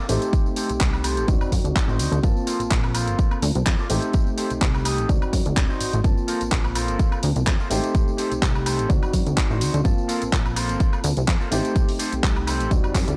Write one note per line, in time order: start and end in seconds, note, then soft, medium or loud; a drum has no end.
0.09 0.18 A1 medium
0.09 1.23 A3 medium
0.09 1.24 C4 medium
0.09 1.24 D#4 medium
0.09 0.48 G4 medium
0.09 1.24 G4 loud
0.09 0.48 A4 medium
0.09 0.48 C5 loud
0.09 open hi-hat loud
0.09 tambourine medium
0.22 closed hi-hat medium
0.22 tambourine soft
0.33 kick loud
0.33 closed hi-hat medium
0.33 tambourine soft
0.46 tambourine soft
0.56 0.70 G4 loud
0.56 0.70 A4 loud
0.56 0.70 C5 loud
0.56 open hi-hat loud
0.56 tambourine medium
0.69 0.78 C2 soft
0.69 closed hi-hat medium
0.69 tambourine soft
0.80 1.19 C2 medium
0.80 kick loud
0.80 clap loud
0.80 closed hi-hat medium
0.80 tambourine soft
0.93 muted clean electric guitar stroke medium
0.93 tambourine soft
0.93 high woodblock medium
1.04 1.28 G4 loud
1.04 1.29 A4 loud
1.04 1.29 C5 loud
1.04 open hi-hat loud
1.04 tambourine medium
1.04 high woodblock medium
1.17 1.25 A1 medium
1.17 closed hi-hat medium
1.17 tambourine soft
1.28 1.37 D2 medium
1.28 2.19 C4 medium
1.28 2.19 D#4 medium
1.28 2.20 F#4 medium
1.28 2.19 D5 medium
1.28 kick loud
1.28 closed hi-hat medium
1.28 tambourine soft
1.41 tambourine soft
1.41 high woodblock medium
1.52 1.61 F#2 medium
1.52 kick medium
1.52 open hi-hat loud
1.52 tambourine medium
1.65 1.72 D2 medium
1.65 closed hi-hat medium
1.65 tambourine soft
1.76 kick loud
1.76 clap loud
1.76 closed hi-hat soft
1.76 tambourine soft
1.88 2.01 A1 loud
1.88 2.18 D#4 medium
1.88 2.18 F#4 medium
1.88 2.18 C5 medium
1.88 tambourine soft
1.99 2.08 D2 medium
1.99 open hi-hat loud
1.99 tambourine loud
1.99 tambourine medium
2.12 2.20 D2 loud
2.12 closed hi-hat medium
2.12 tambourine soft
2.23 2.32 G1 medium
2.23 3.85 A#3 medium
2.23 3.86 C4 medium
2.23 3.86 F4 medium
2.23 3.86 A5 medium
2.23 kick loud
2.23 closed hi-hat medium
2.23 tambourine soft
2.36 tambourine soft
2.47 2.60 F4 loud
2.47 2.60 A4 loud
2.47 2.60 A#4 loud
2.47 2.60 C5 loud
2.47 open hi-hat loud
2.47 tambourine loud
2.47 tambourine medium
2.60 2.69 A#1 soft
2.60 closed hi-hat medium
2.60 tambourine soft
2.71 3.09 A#1 medium
2.71 kick loud
2.71 clap loud
2.71 tambourine soft
2.84 muted clean electric guitar stroke medium
2.84 tambourine soft
2.84 high woodblock medium
2.95 3.37 F4 loud
2.95 3.37 A4 loud
2.95 3.37 A#4 loud
2.95 3.37 C5 loud
2.95 open hi-hat loud
2.95 tambourine medium
2.95 high woodblock medium
3.07 3.15 G1 medium
3.07 closed hi-hat medium
3.07 tambourine soft
3.19 kick loud
3.19 closed hi-hat soft
3.19 tambourine soft
3.31 tambourine soft
3.31 high woodblock medium
3.42 3.51 D2 loud
3.42 open hi-hat loud
3.42 tambourine medium
3.55 3.63 C2 medium
3.55 closed hi-hat medium
3.55 tambourine soft
3.66 3.75 F2 medium
3.66 kick loud
3.66 clap loud
3.66 closed hi-hat soft
3.66 tambourine soft
3.79 3.90 F4 medium
3.79 3.89 A4 medium
3.79 3.90 A#4 medium
3.79 3.91 D5 medium
3.79 tambourine soft
3.89 3.99 A1 medium
3.89 5.04 A3 medium
3.89 5.05 C4 medium
3.89 5.05 D#4 medium
3.89 4.29 G4 medium
3.89 5.05 G4 loud
3.89 4.29 A4 medium
3.89 4.29 C5 medium
3.89 open hi-hat loud
3.89 tambourine medium
4.02 closed hi-hat medium
4.02 tambourine soft
4.13 kick loud
4.13 closed hi-hat soft
4.13 tambourine medium
4.13 tambourine soft
4.27 tambourine soft
4.37 4.50 G4 loud
4.37 4.51 A4 medium
4.37 4.51 C5 loud
4.37 open hi-hat loud
4.37 tambourine medium
4.37 tambourine loud
4.50 4.60 C2 soft
4.50 closed hi-hat medium
4.50 tambourine soft
4.62 5.00 C2 medium
4.62 kick loud
4.62 clap loud
4.62 closed hi-hat soft
4.62 tambourine soft
4.74 muted clean electric guitar stroke medium
4.74 tambourine soft
4.74 high woodblock medium
4.85 5.09 G4 loud
4.85 5.09 A4 loud
4.85 5.09 D#5 loud
4.85 open hi-hat loud
4.85 tambourine medium
4.85 high woodblock medium
4.98 5.06 A1 medium
4.98 closed hi-hat medium
4.98 tambourine soft
5.09 5.18 D2 medium
5.09 6.00 C4 medium
5.09 6.00 D#4 medium
5.09 6.01 F#4 medium
5.09 6.00 D5 medium
5.09 kick loud
5.09 closed hi-hat medium
5.09 tambourine soft
5.22 5.31 F#2 soft
5.22 tambourine soft
5.22 high woodblock medium
5.33 5.42 F#2 medium
5.33 kick medium
5.33 open hi-hat loud
5.33 tambourine medium
5.46 5.54 D2 medium
5.46 closed hi-hat medium
5.46 tambourine soft
5.57 5.66 D1 medium
5.57 kick loud
5.57 clap loud
5.57 closed hi-hat soft
5.57 tambourine soft
5.69 5.99 D#4 medium
5.69 5.99 F#4 medium
5.69 5.99 C5 medium
5.69 tambourine soft
5.80 5.91 A1 soft
5.80 open hi-hat loud
5.80 tambourine loud
5.80 tambourine medium
5.93 6.01 A1 medium
5.93 closed hi-hat medium
5.93 tambourine soft
6.04 6.13 G1 medium
6.04 7.66 A#3 medium
6.04 7.66 C4 medium
6.04 7.67 F4 medium
6.04 7.67 A5 medium
6.04 kick loud
6.04 closed hi-hat soft
6.04 tambourine soft
6.17 tambourine soft
6.28 6.41 F4 loud
6.28 6.41 A4 loud
6.28 6.41 A#4 loud
6.28 6.41 C5 loud
6.28 open hi-hat loud
6.28 tambourine medium
6.41 6.50 A#1 soft
6.41 closed hi-hat medium
6.41 tambourine soft
6.52 6.90 A#1 medium
6.52 kick loud
6.52 clap loud
6.52 closed hi-hat medium
6.64 muted clean electric guitar stroke medium
6.64 tambourine soft
6.64 high woodblock medium
6.75 7.18 F4 loud
6.75 7.18 A4 loud
6.75 7.18 A#4 loud
6.75 7.18 C5 loud
6.75 open hi-hat loud
6.75 tambourine medium
6.75 high woodblock medium
6.88 6.96 G1 medium
6.88 closed hi-hat medium
6.88 tambourine soft
6.99 kick loud
6.99 closed hi-hat soft
6.99 tambourine soft
7.12 tambourine soft
7.12 high woodblock medium
7.23 7.32 D2 loud
7.23 open hi-hat loud
7.23 tambourine medium
7.36 7.44 C2 medium
7.36 closed hi-hat medium
7.36 tambourine soft
7.47 7.56 F2 medium
7.47 kick loud
7.47 clap loud
7.47 closed hi-hat soft
7.47 tambourine soft
7.60 7.70 F4 medium
7.60 7.70 A4 medium
7.60 7.71 A#4 medium
7.60 7.71 C5 medium
7.60 tambourine soft
7.70 7.80 A1 medium
7.70 8.85 A3 medium
7.70 8.85 C4 medium
7.70 8.86 D#4 medium
7.70 8.10 G4 medium
7.70 8.86 G4 loud
7.70 8.10 A4 medium
7.70 8.10 C5 loud
7.70 open hi-hat loud
7.70 tambourine medium
7.84 closed hi-hat medium
7.84 tambourine soft
7.95 kick loud
7.95 closed hi-hat soft
7.95 tambourine soft
8.08 tambourine soft
8.18 8.31 G4 loud
8.18 8.32 A4 loud
8.18 8.32 C5 loud
8.18 open hi-hat medium
8.18 tambourine medium
8.32 8.40 C2 soft
8.32 closed hi-hat medium
8.32 tambourine soft
8.42 8.80 C2 medium
8.42 kick loud
8.42 clap loud
8.42 closed hi-hat medium
8.42 tambourine soft
8.55 muted clean electric guitar stroke medium
8.55 tambourine soft
8.55 high woodblock medium
8.66 8.90 G4 loud
8.66 8.90 A4 loud
8.66 8.90 C5 loud
8.66 open hi-hat medium
8.66 tambourine medium
8.66 high woodblock medium
8.79 8.87 A1 medium
8.79 closed hi-hat medium
8.79 tambourine soft
8.89 8.99 D2 medium
8.89 9.80 C4 medium
8.89 9.81 D#4 medium
8.89 9.81 F#4 medium
8.89 9.81 D5 medium
8.89 kick loud
8.89 closed hi-hat medium
8.89 tambourine soft
9.03 9.12 F#2 soft
9.03 tambourine soft
9.03 high woodblock medium
9.13 9.23 F#2 medium
9.13 kick medium
9.13 open hi-hat loud
9.13 tambourine medium
9.25 9.34 D2 medium
9.25 closed hi-hat medium
9.25 tambourine soft
9.27 tambourine soft
9.37 kick loud
9.37 clap loud
9.37 closed hi-hat soft
9.37 tambourine soft
9.50 9.63 A1 loud
9.50 9.80 D#4 medium
9.50 9.80 F#4 medium
9.50 9.80 C5 medium
9.50 tambourine soft
9.60 open hi-hat medium
9.60 tambourine medium
9.61 9.70 D2 medium
9.61 tambourine medium
9.74 9.82 D2 loud
9.74 closed hi-hat medium
9.74 tambourine soft
9.84 9.94 G1 loud
9.84 11.47 A#3 medium
9.84 11.47 C4 medium
9.84 11.47 F4 medium
9.84 11.48 A5 loud
9.84 kick loud
9.84 closed hi-hat medium
9.84 tambourine soft
9.98 tambourine soft
10.08 10.22 F4 loud
10.08 10.22 A4 loud
10.08 10.22 A#4 loud
10.08 10.22 C5 loud
10.08 open hi-hat medium
10.08 tambourine medium
10.22 10.31 A#1 soft
10.22 closed hi-hat medium
10.22 tambourine soft
10.33 10.71 A#1 medium
10.33 kick loud
10.33 clap loud
10.33 closed hi-hat medium
10.33 tambourine soft
10.45 muted clean electric guitar stroke medium
10.45 tambourine soft
10.45 high woodblock medium
10.56 10.99 F4 loud
10.56 10.99 A4 loud
10.56 10.99 A#4 loud
10.56 10.99 C5 loud
10.56 open hi-hat loud
10.56 tambourine medium
10.56 high woodblock medium
10.69 10.77 G1 medium
10.69 closed hi-hat medium
10.69 tambourine soft
10.80 kick loud
10.80 closed hi-hat medium
10.80 tambourine soft
10.93 tambourine soft
10.93 high woodblock medium
11.04 11.13 D2 loud
11.04 open hi-hat loud
11.04 tambourine medium
11.17 11.25 C2 medium
11.17 closed hi-hat medium
11.17 tambourine soft
11.28 11.37 F2 medium
11.28 kick loud
11.28 clap loud
11.28 closed hi-hat medium
11.28 tambourine soft
11.40 11.51 F4 medium
11.40 11.51 A4 medium
11.40 11.52 A#4 medium
11.40 11.51 C5 medium
11.40 tambourine soft
11.51 11.61 A1 medium
11.51 12.66 A3 medium
11.51 12.66 C4 medium
11.51 12.67 D#4 medium
11.51 11.91 G4 medium
11.51 12.67 G4 loud
11.51 11.91 A4 medium
11.51 11.91 C5 loud
11.51 open hi-hat loud
11.51 tambourine medium
11.64 closed hi-hat medium
11.64 tambourine soft
11.75 kick loud
11.75 closed hi-hat medium
11.75 tambourine medium
11.75 tambourine soft
11.89 open hi-hat medium
11.89 tambourine soft
11.99 12.12 G4 loud
11.99 12.12 A4 loud
11.99 12.13 C5 loud
11.99 open hi-hat medium
11.99 tambourine medium
12.12 12.21 C2 soft
12.12 closed hi-hat medium
12.12 tambourine soft
12.23 12.62 C2 medium
12.23 kick loud
12.23 clap loud
12.23 closed hi-hat medium
12.23 tambourine soft
12.36 muted clean electric guitar stroke medium
12.36 tambourine soft
12.36 high woodblock medium
12.47 12.71 G4 loud
12.47 12.71 A4 loud
12.47 12.71 C5 loud
12.47 open hi-hat medium
12.47 tambourine medium
12.47 high woodblock medium
12.60 12.68 A1 medium
12.60 closed hi-hat medium
12.60 tambourine soft
12.70 12.80 D2 medium
12.70 13.17 C4 medium
12.70 13.17 D#4 medium
12.70 13.17 F#4 medium
12.70 13.17 D5 medium
12.70 kick loud
12.70 closed hi-hat medium
12.70 tambourine soft
12.70 swell medium
12.84 12.93 F#2 soft
12.84 tambourine soft
12.84 high woodblock medium
12.95 13.04 F#2 medium
12.95 kick medium
12.95 clap medium
12.95 open hi-hat loud
12.95 tambourine medium
13.08 13.15 D2 medium
13.08 closed hi-hat medium
13.08 tambourine soft